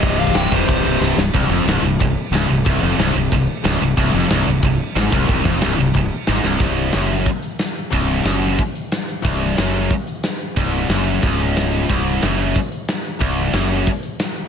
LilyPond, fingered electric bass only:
\new Staff \with { instrumentName = "Fingered electric bass" } { \clef bass \time 4/4 \key bes \dorian \tempo 4 = 182 c,,4 c,,8 f,,8 c,,8 c,,8 c,,8 c,,8 | c,,8 f,,8 c,,8 c,,8 c,,8 r8 des,,8 c,,8 | c,,8 f,,8 c,,8 c,,8 c,,8 r8 des,,8 c,,8 | c,,8 f,,8 c,,8 c,,8 c,,8 r8 aes,,8 c,,8 |
c,,8 f,,8 c,,8 c,,8 c,,8 r8 aes,,8 c,,8 | c,,4 fis,,4 r2 | c,,4 fis,,4 r2 | c,,4 fis,,4 r2 |
c,,4 fis,,4 des,,2 | c,,4 fis,,4 r2 | c,,4 fis,,4 r2 | }